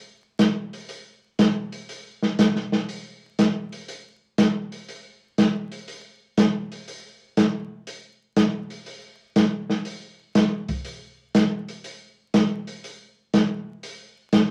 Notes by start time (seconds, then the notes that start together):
0.39 snare, closed hi-hat
0.73 open hi-hat
0.89 open hi-hat
1.39 snare, closed hi-hat
1.72 open hi-hat
1.89 open hi-hat
2.23 snare
2.39 snare, closed hi-hat
2.56 snare
2.72 snare
2.89 open hi-hat
3.39 snare, closed hi-hat
3.72 open hi-hat
3.88 open hi-hat
4.38 snare, closed hi-hat
4.72 open hi-hat
4.89 open hi-hat
5.38 snare, closed hi-hat
5.72 open hi-hat
5.88 open hi-hat
6.38 snare, closed hi-hat
6.72 open hi-hat
6.88 open hi-hat
7.37 snare, closed hi-hat
7.87 open hi-hat
8.36 snare, closed hi-hat
8.70 open hi-hat
8.86 open hi-hat
9.36 snare, closed hi-hat
9.70 snare
9.85 open hi-hat
10.35 snare, closed hi-hat
10.68 kick, open hi-hat
10.85 open hi-hat
11.35 snare, closed hi-hat
11.69 open hi-hat
11.84 open hi-hat
12.34 snare, closed hi-hat
12.67 open hi-hat
12.84 open hi-hat
13.34 snare, closed hi-hat
13.83 open hi-hat
14.33 snare, closed hi-hat